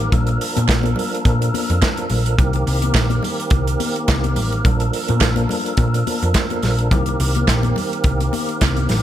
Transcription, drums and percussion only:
0.12 kick, closed hi-hat, muted conga, low conga
0.27 closed hi-hat, muted conga
0.41 open hi-hat
0.57 closed hi-hat, high conga
0.69 kick, snare, clap, closed hi-hat
0.83 closed hi-hat, muted conga, high conga
0.96 open hi-hat, low conga
1.14 closed hi-hat
1.25 kick, closed hi-hat
1.42 closed hi-hat, muted conga
1.54 open hi-hat, high conga
1.70 closed hi-hat
1.82 kick, snare, clap, closed hi-hat, muted conga
1.97 closed hi-hat, high conga
2.10 open hi-hat, low conga
2.26 closed hi-hat
2.39 kick, closed hi-hat, low conga
2.53 closed hi-hat, muted conga
2.67 open hi-hat
2.82 closed hi-hat, high conga
2.95 kick, snare, clap, closed hi-hat
3.10 closed hi-hat, high conga
3.23 open hi-hat, low conga
3.40 closed hi-hat
3.50 kick, closed hi-hat, muted conga
3.67 closed hi-hat
3.80 open hi-hat, high conga
3.96 closed hi-hat
4.08 kick, snare, clap, closed hi-hat, muted conga
4.24 closed hi-hat, muted conga, high conga
4.36 open hi-hat, low conga
4.52 closed hi-hat
4.65 kick, closed hi-hat, muted conga, low conga
4.80 closed hi-hat, muted conga
4.93 open hi-hat
5.08 closed hi-hat, high conga
5.21 kick, snare, clap, closed hi-hat
5.36 closed hi-hat, muted conga, high conga
5.49 open hi-hat, low conga
5.66 closed hi-hat
5.77 kick, closed hi-hat, muted conga
5.94 closed hi-hat, muted conga
6.07 open hi-hat, high conga
6.22 closed hi-hat
6.34 kick, snare, clap, closed hi-hat
6.50 closed hi-hat, muted conga, high conga
6.62 snare, open hi-hat, low conga
6.79 closed hi-hat
6.91 kick, closed hi-hat, muted conga, low conga
7.06 closed hi-hat, muted conga
7.20 open hi-hat
7.35 closed hi-hat, high conga
7.48 kick, snare, clap, closed hi-hat, muted conga
7.63 closed hi-hat, muted conga, high conga
7.76 open hi-hat, low conga
7.93 closed hi-hat
8.04 kick, closed hi-hat
8.20 closed hi-hat, muted conga
8.33 open hi-hat, high conga
8.49 closed hi-hat
8.61 kick, snare, clap, closed hi-hat, muted conga
8.76 closed hi-hat, high conga
8.89 snare, open hi-hat, low conga

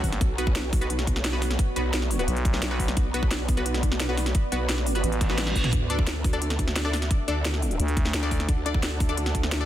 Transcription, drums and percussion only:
0.04 kick, open hi-hat
0.12 snare, closed hi-hat
0.21 kick, closed hi-hat
0.38 closed hi-hat
0.47 kick
0.56 snare, closed hi-hat
0.73 kick, open hi-hat
0.81 closed hi-hat
0.90 closed hi-hat
0.99 snare, closed hi-hat
1.07 kick, closed hi-hat
1.16 snare
1.25 snare, closed hi-hat
1.42 snare, open hi-hat
1.51 snare, closed hi-hat
1.59 kick, closed hi-hat
1.76 closed hi-hat
1.94 snare, closed hi-hat
2.02 snare
2.11 open hi-hat
2.19 closed hi-hat
2.28 closed hi-hat
2.37 closed hi-hat
2.45 kick, closed hi-hat
2.54 snare
2.62 snare, closed hi-hat
2.80 kick, open hi-hat
2.88 snare, closed hi-hat
2.97 kick, closed hi-hat
3.14 closed hi-hat
3.23 kick
3.31 snare, closed hi-hat
3.48 kick, open hi-hat
3.57 closed hi-hat
3.66 closed hi-hat
3.74 snare, closed hi-hat
3.83 kick, closed hi-hat
3.92 snare
4.00 snare, closed hi-hat
4.17 snare, open hi-hat
4.26 snare, closed hi-hat
4.35 kick, closed hi-hat
4.52 closed hi-hat
4.69 snare, closed hi-hat
4.78 snare
4.87 open hi-hat
4.95 closed hi-hat
5.04 closed hi-hat
5.12 closed hi-hat
5.21 kick, closed hi-hat
5.30 snare
5.38 snare, closed hi-hat, high tom
5.47 snare, high tom
5.55 kick, open hi-hat
5.64 snare, closed hi-hat, mid tom
5.73 kick, closed hi-hat
5.90 closed hi-hat
5.99 kick
6.07 snare, closed hi-hat
6.24 kick, open hi-hat
6.33 closed hi-hat
6.42 closed hi-hat
6.50 snare, closed hi-hat
6.59 kick, closed hi-hat
6.68 snare
6.76 snare, closed hi-hat
6.93 snare, open hi-hat
7.02 snare, closed hi-hat
7.11 kick, closed hi-hat
7.28 closed hi-hat
7.45 snare, closed hi-hat
7.54 snare
7.62 open hi-hat
7.71 closed hi-hat
7.80 closed hi-hat
7.88 closed hi-hat
7.97 kick, closed hi-hat
8.05 snare
8.14 snare, closed hi-hat
8.31 kick, open hi-hat
8.40 snare, closed hi-hat
8.49 kick, closed hi-hat
8.66 closed hi-hat
8.74 kick
8.83 snare, closed hi-hat
9.00 kick, open hi-hat
9.09 closed hi-hat
9.17 closed hi-hat
9.26 snare, closed hi-hat
9.35 kick, closed hi-hat
9.43 snare
9.52 snare, closed hi-hat

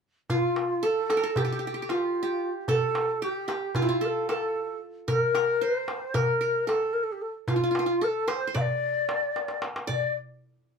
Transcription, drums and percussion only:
0.30 darbuka dum
0.56 darbuka tek
0.83 darbuka ka
1.10 darbuka tek
1.36 darbuka dum
1.63 darbuka ka
1.89 darbuka tek
2.15 darbuka ka
2.68 darbuka dum
2.95 darbuka tek
3.22 darbuka ka
3.49 darbuka tek
3.75 darbuka dum
4.03 darbuka ka
4.29 darbuka tek
4.55 darbuka ka
5.08 darbuka dum
5.35 darbuka tek
5.61 darbuka ka
5.88 darbuka tek
6.15 darbuka dum
6.28 darbuka ka
6.42 darbuka ka
6.69 darbuka tek
6.95 darbuka ka
7.48 darbuka dum
7.75 darbuka tek
8.02 darbuka ka
8.28 darbuka tek
8.55 darbuka dum
8.69 darbuka ka
8.82 darbuka ka
8.95 darbuka ka
9.09 darbuka tek
9.36 darbuka tek
9.48 darbuka ka
9.62 darbuka tek
9.76 darbuka ka
9.89 darbuka dum

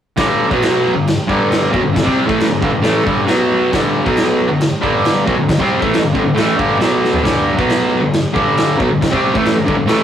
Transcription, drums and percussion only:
0.17 kick, snare, crash
0.51 kick
0.62 snare, crash
1.07 snare, crash
1.29 kick
1.52 snare, crash
1.74 kick
1.96 kick, snare, crash
2.07 kick
2.29 kick
2.40 snare, crash
2.62 kick
2.84 snare, crash
3.07 kick
3.28 snare, crash
3.73 kick, snare, crash
4.06 kick
4.17 snare, crash
4.61 snare, crash
4.83 kick
5.05 snare, crash
5.28 kick
5.49 kick, snare, crash
5.60 kick
5.82 kick
5.94 snare, crash
6.15 kick
6.37 snare, crash
6.59 kick
6.81 snare, crash
7.04 snare
7.13 floor tom
7.25 kick, snare, crash
7.59 kick
7.70 snare, crash
8.13 snare, crash
8.36 kick
8.57 snare, crash
8.80 kick
9.02 kick, snare, crash
9.13 kick
9.35 kick
9.46 snare, crash
9.68 kick
9.88 snare, crash

